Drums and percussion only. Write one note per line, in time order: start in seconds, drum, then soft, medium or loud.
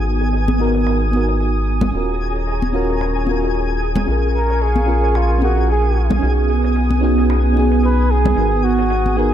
0.06 shaker medium
0.21 closed hi-hat soft
0.33 closed hi-hat soft
0.33 shaker soft
0.48 high conga medium
0.60 shaker medium
0.75 closed hi-hat soft
0.87 finger snap medium
0.87 closed hi-hat soft
1.13 high conga medium
1.13 shaker medium
1.29 closed hi-hat soft
1.40 closed hi-hat soft
1.68 shaker medium
1.81 closed hi-hat soft
1.81 high conga medium
1.81 low conga medium
1.94 closed hi-hat soft
1.94 shaker soft
2.21 shaker medium
2.36 closed hi-hat soft
2.47 closed hi-hat soft
2.62 high conga medium
2.62 shaker soft
2.74 shaker medium
2.90 closed hi-hat soft
3.01 finger snap medium
3.01 closed hi-hat soft
3.27 high conga medium
3.43 closed hi-hat soft
3.55 closed hi-hat soft
3.81 shaker medium
3.96 closed hi-hat soft
3.96 high conga medium
3.96 low conga medium
4.08 closed hi-hat soft
4.35 shaker medium
4.50 closed hi-hat soft
4.62 closed hi-hat soft
4.62 shaker soft
4.76 high conga medium
4.88 shaker medium
5.04 closed hi-hat soft
5.15 finger snap medium
5.15 closed hi-hat soft
5.15 shaker soft
5.42 high conga medium
5.42 shaker medium
5.57 closed hi-hat soft
5.69 closed hi-hat soft
5.69 shaker soft
5.84 shaker soft
5.96 shaker medium
6.10 closed hi-hat soft
6.10 high conga medium
6.10 low conga medium
6.22 closed hi-hat soft
6.22 shaker soft
6.38 shaker soft
6.49 shaker medium
6.64 closed hi-hat soft
6.64 shaker soft
6.76 closed hi-hat soft
6.76 shaker soft
6.91 high conga medium
6.91 shaker soft
7.03 shaker medium
7.18 closed hi-hat soft
7.18 shaker soft
7.30 finger snap medium
7.30 closed hi-hat soft
7.30 shaker soft
7.57 high conga medium
7.57 shaker medium
7.72 closed hi-hat soft
7.72 shaker soft
7.83 closed hi-hat soft
7.83 shaker soft
8.10 shaker medium
8.25 closed hi-hat soft
8.25 high conga medium
8.25 low conga medium
8.37 closed hi-hat soft
8.37 shaker soft
8.52 shaker soft
8.64 shaker medium
8.79 closed hi-hat medium
8.79 shaker soft
8.90 closed hi-hat soft
8.90 shaker soft
9.06 high conga medium
9.06 shaker soft
9.17 shaker medium